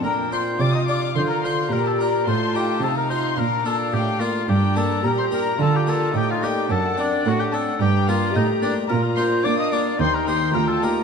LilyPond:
<<
  \new Staff \with { instrumentName = "Violin section" } { \time 4/4 \key bes \major \tempo 4 = 108 bes''8 c'''8 d'''16 ees'''16 d'''8 c'''16 bes''16 c'''8 bes''16 a''16 bes''8 | c'''8 g''8 a''16 bes''16 c'''8 bes''8 a''8 g''8 f''8 | g''8 a''8 bes''16 c'''16 bes''8 a''16 g''16 a''8 g''16 f''16 g''8 | a''8 d''8 fis''16 g''16 a''8 g''8 f''8 ees''8 d''8 |
bes''8 c'''8 d'''16 ees'''16 d'''8 c'''16 bes''16 c'''8 bes''16 a''16 bes''8 | }
  \new Staff \with { instrumentName = "Violin section" } { \time 4/4 \key bes \major g''4 f''2 d''4 | a''4 f''4 f''2 | bes''2. g''4 | fis''4 fis''4 bes''2 |
bes''4 f''4 g''2 | }
  \new Staff \with { instrumentName = "Oboe" } { \time 4/4 \key bes \major bes'8 c''8 d''16 ees''16 d''8 c''16 bes'16 c''8 bes'16 a'16 bes'8 | c''8 g'8 a'16 bes'16 c''8 bes'8 a'8 g'8 f'8 | g'8 a'8 bes'16 c''16 bes'8 a'16 g'16 a'8 g'16 f'16 g'8 | a'8 d'8 fis'16 g'16 a'8 g'8 f'8 ees'8 d'8 |
bes'8 c''8 d''16 ees''16 d''8 c''16 bes'16 c''8 bes'16 a'16 bes'8 | }
  \new Staff \with { instrumentName = "Viola section" } { \time 4/4 \key bes \major d'4 f'4 f'4 g'4 | f'4 ees'4 d'2 | d'4 g'4 f'4 ees'4 | d'2 d'4 g'4 |
f'4 d'4 ees'4 f'4 | }
  \new Staff \with { instrumentName = "Harpsichord" } { \time 4/4 \key bes \major r8 <d' f'>4 <d' f'>8 r8 <d' f'>4 <d' f'>8 | r8 <ees' f'>4 <ees' f'>8 r8 <bes d' f'>4 <bes d' f'>8 | r8 <bes d' g'>4 <bes d' g'>8 r8 <bes d' g'>4 <bes d' g'>8 | r8 <c' d'>4 <c' d'>8 r8 <bes d' g'>4 <bes d' g'>8 |
r8 <bes d' f'>4 <bes d' f'>8 r8 <bes ees' g'>4 <bes ees' g'>8 | }
  \new Staff \with { instrumentName = "Harpsichord" } { \clef bass \time 4/4 \key bes \major bes,4 c4 d4 bes,4 | a,4 c4 bes,4 a,4 | g,4 bes,4 d4 a,4 | fis,4 a,4 g,4 a,4 |
bes,4 bes4 ees,4 d,4 | }
  \new Staff \with { instrumentName = "Cello section" } { \clef bass \time 4/4 \key bes \major bes,4 c4 d4 bes,4 | a,4 c4 bes,4 a,4 | g,4 bes,4 d4 a,4 | fis,4 a,4 g,4 a,4 |
bes,4 bes4 ees,4 d,4 | }
>>